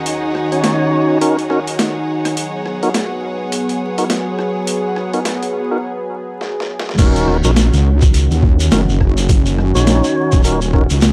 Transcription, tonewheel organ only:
0.52 1.18 C#4 medium
0.52 1.18 D#4 medium
0.52 1.18 F#4 medium
0.52 1.18 C#5 medium
1.21 1.37 C#4 medium
1.21 1.37 D#4 medium
1.21 1.37 F#4 medium
1.21 1.37 A#4 loud
1.50 1.60 C#4 medium
1.50 1.60 D#4 medium
1.50 1.60 F#4 medium
1.50 1.60 A#4 medium
2.83 2.89 B3 medium
2.83 2.89 D#4 medium
2.83 2.89 F#4 medium
2.83 2.89 A#4 medium
3.98 4.05 B3 medium
3.98 4.05 D#4 medium
3.98 4.05 F#4 medium
3.98 4.05 A#4 medium
5.14 5.20 B3 medium
5.14 5.20 D#4 medium
5.14 5.20 F#4 medium
5.14 5.20 A#4 medium
5.71 5.78 B3 medium
5.71 5.78 D#4 medium
5.71 5.78 F#4 medium
5.71 5.78 A#4 medium
6.98 7.38 C#4 loud
6.98 7.37 D#4 medium
6.98 7.37 F#4 medium
6.98 7.37 A#4 loud
7.44 7.51 C#4 medium
7.44 7.51 D#4 medium
7.44 7.51 F#4 medium
7.44 7.51 A#4 medium
8.72 8.81 C#4 medium
8.72 8.81 D#4 medium
8.72 8.81 F#4 medium
8.72 8.81 A#4 medium
9.75 10.42 C#4 medium
9.75 10.42 D#4 medium
9.75 10.42 F#4 medium
9.75 10.42 C#5 medium
10.44 10.60 C#4 medium
10.44 10.60 D#4 medium
10.44 10.60 F#4 medium
10.44 10.60 A#4 loud
10.73 10.83 C#4 medium
10.73 10.83 D#4 medium
10.73 10.83 F#4 medium
10.73 10.83 A#4 medium

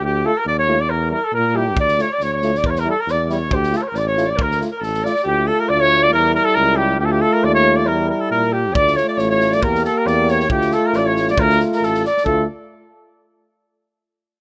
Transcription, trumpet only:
0.04 0.27 G4 medium
0.26 0.39 A4 loud
0.37 0.46 A#4 medium
0.48 0.57 D5 medium
0.59 0.82 C#5 loud
0.81 0.91 D5 medium
0.90 1.10 A#4 medium
1.11 1.26 A#4 medium
1.24 1.33 A4 medium
1.34 1.58 A#4 loud
1.57 1.77 G4 medium
1.80 2.03 D5 loud
2.01 2.14 C#5 medium
2.13 2.24 D5 medium
2.23 2.33 C#5 medium
2.33 2.59 C#5 medium
2.58 2.68 D5 medium
2.67 2.72 A#4 medium
2.67 2.81 C#5 medium
2.80 2.87 A#4 loud
2.90 3.02 A4 medium
3.00 3.12 A#4 medium
3.11 3.23 D5 medium
3.23 3.35 D5 medium
3.33 3.57 C#5 medium
3.55 3.78 G4 medium
3.77 3.85 A4 medium
3.83 3.91 C#5 medium
3.89 4.00 A#4 medium
3.98 4.00 D5 medium
4.04 4.08 D5 medium
4.08 4.32 C#5 medium
4.30 4.43 D5 medium
4.42 4.62 A#4 medium
4.76 4.86 A#4 medium
4.84 5.06 A4 medium
5.05 5.26 D5 medium
5.27 5.49 G4 loud
5.47 5.61 A4 medium
5.60 5.70 A#4 medium
5.69 5.81 D5 loud
5.80 6.05 C#5 loud
6.03 6.13 D5 loud
6.14 6.33 A#4 loud
6.35 6.46 A#4 loud
6.44 6.56 A4 loud
6.55 6.78 A#4 loud
6.76 6.99 G4 loud
7.00 7.07 G4 loud
7.05 7.13 A4 medium
7.11 7.23 G4 medium
7.21 7.34 A4 loud
7.33 7.45 A#4 medium
7.44 7.54 D5 medium
7.54 7.78 C#5 loud
7.76 7.88 D5 medium
7.87 8.08 A#4 loud
8.09 8.22 A#4 medium
8.20 8.30 A4 medium
8.30 8.54 A#4 medium
8.53 8.77 G4 medium
8.75 8.98 D5 loud
8.96 9.08 C#5 medium
9.10 9.12 D5 loud
9.14 9.29 C#5 medium
9.14 9.18 D5 loud
9.31 9.56 C#5 loud
9.54 9.65 D5 medium
9.63 9.85 A#4 medium
9.85 10.00 A4 medium
9.98 10.08 A#4 medium
10.07 10.31 D5 loud
10.30 10.50 C#5 loud
10.50 10.75 G4 medium
10.73 10.88 A4 medium
10.86 10.97 A#4 medium
10.96 11.07 D5 medium
11.06 11.27 C#5 loud
11.30 11.41 D5 medium
11.39 11.60 A#4 loud
11.75 11.85 A#4 medium
11.84 12.04 A4 medium
12.06 12.25 D5 medium
12.25 12.45 A4 medium

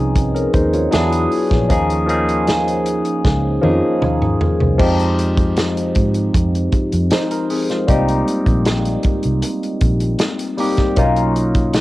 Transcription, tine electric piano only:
0.00 0.95 F3 medium
0.00 0.95 C4 medium
0.00 0.35 C#4 medium
0.00 0.54 D#4 medium
0.00 0.93 G#4 loud
0.35 0.53 C#4 soft
0.35 0.53 A#4 medium
0.54 0.72 D#4 medium
0.54 0.72 C5 medium
0.73 1.10 F4 medium
0.73 1.10 C#5 medium
0.91 1.60 F#3 medium
0.91 1.61 B3 medium
0.91 1.61 D4 medium
0.91 1.61 E4 medium
0.91 1.62 G#4 loud
1.69 2.04 F3 medium
1.69 2.04 A#3 medium
1.69 2.04 C#4 medium
1.69 2.05 D#4 medium
1.69 2.05 G#4 medium
2.07 3.45 F3 medium
2.07 3.45 A#3 medium
2.07 3.46 C#4 medium
2.07 3.46 D#4 medium
2.07 3.46 G#4 medium
3.61 4.65 F3 medium
3.61 4.66 A#3 medium
3.61 4.66 C#4 medium
3.61 4.66 D#4 medium
3.61 4.67 G#4 medium
4.78 6.16 F3 medium
4.78 6.16 G#3 medium
4.78 6.16 C4 medium
4.78 6.17 D#4 medium
4.78 6.17 G4 medium
7.12 7.30 D#4 medium
7.12 7.30 C5 medium
7.31 7.49 A#4 medium
7.50 7.69 C4 medium
7.50 7.68 G#4 medium
7.70 8.06 G#3 medium
7.70 8.06 F4 medium
7.87 9.25 G3 medium
7.87 9.25 A#3 medium
7.87 9.25 C4 medium
7.87 9.26 D#4 medium
7.87 9.26 G4 loud
10.57 10.92 G3 medium
10.57 10.93 A#3 medium
10.57 10.93 C4 medium
10.57 10.93 D#4 medium
10.57 10.94 G4 loud
10.96 11.81 F#3 medium
10.96 11.81 A#3 medium
10.96 11.81 C#4 medium
10.96 11.81 D#4 medium
10.96 11.81 F4 medium

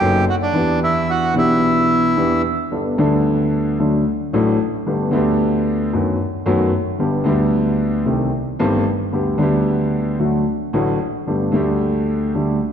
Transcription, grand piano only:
0.01 0.23 F#1 medium
0.01 0.23 F#2 medium
0.01 0.23 F#3 medium
0.01 0.23 B3 medium
0.01 0.23 D#4 medium
0.01 0.23 A4 medium
0.53 1.32 E2 medium
0.53 1.32 E3 medium
0.53 1.32 B3 medium
0.53 1.32 D4 medium
0.53 1.33 G4 medium
1.34 2.13 B1 medium
1.34 2.13 B2 medium
1.34 2.12 E3 medium
1.34 2.13 B3 medium
1.34 2.13 D4 medium
1.34 2.14 G4 medium
2.17 2.40 E2 medium
2.17 2.40 E3 medium
2.17 2.40 B3 medium
2.17 2.40 D4 medium
2.17 2.40 G4 medium
2.71 2.94 G1 soft
2.71 2.94 G2 soft
2.71 2.94 G3 soft
2.71 2.94 B3 soft
2.71 2.95 D4 soft
2.71 2.95 A4 soft
2.97 3.76 D2 medium
2.97 3.76 D3 medium
2.97 3.75 G3 medium
2.97 3.75 B3 medium
2.97 3.76 D4 medium
2.97 3.77 A4 medium
3.79 4.02 D2 medium
3.79 4.02 D3 medium
3.79 4.02 F#3 soft
3.79 4.02 A3 soft
3.79 4.02 D4 soft
3.79 4.02 A4 soft
4.33 4.56 A1 medium
4.33 4.56 A2 medium
4.33 4.56 F#3 medium
4.33 4.56 A3 medium
4.33 4.56 D4 medium
4.33 4.56 A4 medium
4.86 5.09 G1 soft
4.86 5.09 G2 medium
4.86 5.09 D3 soft
4.86 5.09 A3 soft
4.86 5.09 B3 soft
4.86 5.09 G4 soft
5.11 5.89 D2 medium
5.11 5.89 D3 medium
5.11 5.89 A3 medium
5.11 5.89 B3 medium
5.11 5.90 G4 medium
5.93 6.16 F#2 medium
5.93 6.16 D#3 soft
5.93 6.16 F#3 soft
5.93 6.16 A3 soft
5.93 6.16 B3 soft
5.93 6.16 F#4 soft
6.46 6.69 F#2 medium
6.46 6.69 D#3 medium
6.46 6.69 F#3 medium
6.46 6.69 A3 medium
6.46 6.69 B3 medium
6.46 6.69 F#4 medium
6.99 7.22 G1 medium
6.99 7.22 G2 medium
6.99 7.22 D3 soft
6.99 7.22 G3 soft
6.99 7.22 B3 soft
6.99 7.22 G4 medium
7.24 8.02 D2 medium
7.24 8.02 D3 medium
7.24 8.02 G3 medium
7.24 8.02 B3 medium
7.24 8.03 G4 medium
8.05 8.28 C2 medium
8.05 8.28 C3 soft
8.05 8.28 D#3 soft
8.05 8.28 A3 soft
8.05 8.28 C4 soft
8.05 8.28 G4 soft
8.59 8.82 G1 medium
8.59 8.82 G2 medium
8.59 8.82 D#3 medium
8.59 8.82 A3 medium
8.59 8.82 C4 medium
8.59 8.82 G4 medium
9.13 9.35 D2 soft
9.13 9.35 D3 medium
9.13 9.35 G3 soft
9.13 9.35 B3 soft
9.13 9.35 G4 soft
9.38 10.16 D2 medium
9.38 10.16 D3 medium
9.38 10.15 G3 medium
9.38 10.16 B3 medium
9.38 10.17 G4 medium
10.19 10.42 D2 soft
10.19 10.42 D3 soft
10.19 10.42 F#3 soft
10.19 10.42 A3 soft
10.19 10.42 F#4 medium
10.73 10.96 A1 medium
10.73 10.96 A2 medium
10.73 10.96 D3 medium
10.73 10.96 F#3 medium
10.73 10.96 A3 medium
10.73 10.96 F#4 medium
11.27 11.50 G1 soft
11.27 11.50 G2 soft
11.27 11.50 D3 soft
11.27 11.50 G3 soft
11.27 11.50 A3 soft
11.27 11.50 G4 soft
11.52 12.31 D2 medium
11.52 12.31 D3 medium
11.52 12.30 G3 medium
11.52 12.31 A3 medium
11.56 12.32 G4 medium
12.35 12.58 D2 medium
12.35 12.58 D3 medium
12.35 12.58 G3 soft
12.35 12.58 A3 soft
12.35 12.58 G4 soft

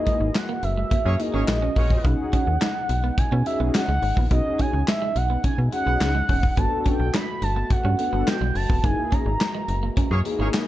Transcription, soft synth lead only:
0.00 0.37 D#5 loud
0.36 0.65 F#5 medium
0.64 1.22 E5 loud
1.20 2.07 D#5 loud
2.05 3.20 F#5 loud
3.18 3.46 G#5 loud
3.47 3.59 E5 medium
3.75 4.27 F#5 loud
4.32 4.62 D#5 loud
4.60 4.88 G#5 medium
4.89 5.18 E5 medium
5.17 5.44 F#5 loud
5.45 5.57 G#5 loud
5.73 6.60 F#5 loud
6.58 6.86 A5 loud
6.86 7.16 G5 loud
7.15 7.45 B5 loud
7.43 7.73 A5 loud
7.71 7.99 F#5 loud
8.00 8.30 F#5 loud
8.28 8.57 G5 loud
8.56 8.86 A5 loud
8.84 9.14 G#5 loud
9.13 10.26 A#5 loud

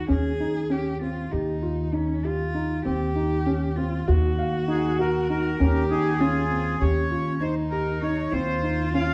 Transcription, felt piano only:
0.08 0.30 C#4 medium
0.40 0.61 D#4 medium
0.70 0.92 C#4 medium
1.01 1.23 C4 medium
1.32 1.54 G4 medium
1.62 1.84 F4 medium
1.93 2.14 D#4 medium
2.24 2.46 G4 medium
2.54 2.76 D#4 medium
2.85 3.07 C4 medium
3.15 3.37 D#4 medium
3.46 3.68 C#4 medium
3.77 3.98 C4 medium
4.08 4.29 F#4 medium
4.38 4.59 F5 medium
4.68 4.89 D#4 medium
4.99 5.20 F#4 medium
5.30 5.50 D#4 medium
5.60 5.81 C#4 medium
5.91 6.12 D#4 medium
6.20 6.41 C#4 medium
6.51 6.72 C4 medium
6.81 7.02 G4 medium
7.11 7.32 F4 medium
7.41 7.62 D#4 medium
7.72 7.93 G4 medium
8.02 8.23 D#4 medium
8.33 8.54 C4 medium
8.63 8.84 D#4 medium
8.94 9.14 C#4 medium

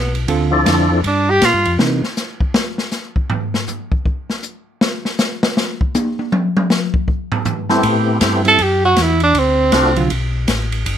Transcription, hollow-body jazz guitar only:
0.28 0.50 D3 medium
0.28 0.50 C4 medium
0.28 0.50 F4 medium
0.28 0.50 A4 medium
0.65 0.87 D3 medium
0.65 0.87 C4 medium
0.65 0.88 F4 medium
0.65 0.88 A4 medium
1.79 2.00 E3 soft
1.79 2.01 A#3 medium
1.79 2.01 D#4 medium
7.69 7.82 G3 medium
7.69 7.82 C4 medium
7.69 7.82 E4 medium
8.45 8.57 G3 medium
8.45 8.58 C4 medium
8.45 8.58 E4 medium
9.97 10.09 D3 medium
9.97 10.09 F#3 medium
9.97 10.09 C4 medium
9.97 10.09 F4 medium

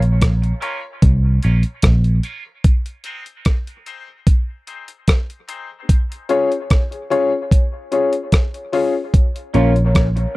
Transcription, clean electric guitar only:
0.42 muted clean electric guitar stroke soft
0.61 0.80 A#3 medium
0.61 0.80 C#4 medium
0.61 0.81 F4 medium
1.43 1.61 A#3 medium
1.43 1.62 C#4 medium
1.43 1.62 F4 medium
2.23 2.42 A#3 medium
2.23 2.43 C#4 medium
2.23 2.43 F4 medium
3.05 3.23 G#3 medium
3.05 3.24 C4 medium
3.05 3.24 D#4 medium
9.54 9.72 A#3 medium
9.54 9.72 C#4 medium
9.54 9.73 F4 medium
10.16 muted clean electric guitar stroke soft

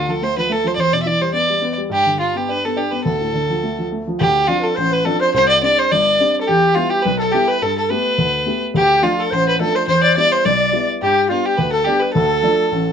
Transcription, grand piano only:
0.00 0.74 D2 medium
0.09 0.20 F3 soft
0.22 0.36 A3 soft
0.37 0.49 F3 soft
0.49 0.64 A3 medium
0.64 0.77 F3 medium
0.77 1.87 E2 medium
0.92 1.05 B2 soft
1.06 1.21 E3 soft
1.21 1.33 G3 soft
1.33 1.49 B3 medium
1.50 1.62 G3 soft
1.62 1.77 B3 medium
1.78 1.90 G3 medium
1.90 3.01 G2 medium
2.06 2.19 D3 soft
2.19 2.35 G3 medium
2.35 2.48 B3 medium
2.49 2.64 D4 medium
2.65 2.77 B3 medium
2.76 2.92 D4 medium
2.92 3.05 B3 medium
3.05 4.16 D2 medium
3.21 3.33 A2 soft
3.34 3.49 D3 soft
3.50 3.62 F3 soft
3.63 3.78 A3 medium
3.78 3.91 F3 soft
3.92 4.07 A3 soft
4.07 4.19 F3 medium
4.21 4.48 D2 medium
4.48 4.71 F3 soft
4.48 4.71 C4 soft
4.48 4.71 D4 soft
4.78 5.05 A1 medium
5.06 5.28 F3 soft
5.06 5.28 C4 soft
5.06 5.28 D4 medium
5.34 5.61 C2 medium
5.62 5.85 G3 soft
5.62 5.85 C4 soft
5.62 5.85 D4 soft
5.92 6.19 G1 medium
6.20 6.42 G3 soft
6.20 6.42 C4 soft
6.20 6.43 D4 medium
6.49 6.76 E2 medium
6.76 6.99 G3 medium
6.76 6.99 B3 soft
6.76 6.99 E4 medium
7.05 7.32 B1 medium
7.34 7.56 G3 soft
7.34 7.56 B3 soft
7.34 7.56 E4 medium
7.62 7.89 G2 medium
7.90 8.13 A3 medium
7.90 8.13 B3 soft
7.90 8.13 G4 medium
8.18 8.46 D2 medium
8.46 8.69 A3 soft
8.46 8.69 B3 soft
8.46 8.69 G4 soft
8.74 9.02 D2 medium
9.02 9.25 F3 medium
9.02 9.26 A3 soft
9.02 9.26 D4 medium
9.32 9.59 A1 medium
9.59 9.82 F3 soft
9.59 9.82 A3 soft
9.59 9.83 D4 medium
9.87 10.15 E2 medium
10.17 10.39 G3 soft
10.17 10.39 B3 soft
10.17 10.40 E4 soft
10.45 10.73 B1 medium
10.72 10.95 G3 soft
10.72 10.96 B3 soft
10.72 10.96 E4 medium
11.02 11.29 G2 medium
11.29 11.52 G3 medium
11.29 11.53 B3 soft
11.29 11.53 D4 soft
11.58 11.86 D2 medium
11.85 12.09 G3 soft
11.85 12.09 B3 soft
11.85 12.09 D4 medium
12.15 12.43 D2 medium
12.43 12.65 F3 medium
12.43 12.66 A3 soft
12.43 12.66 D4 medium
12.72 12.92 A1 medium

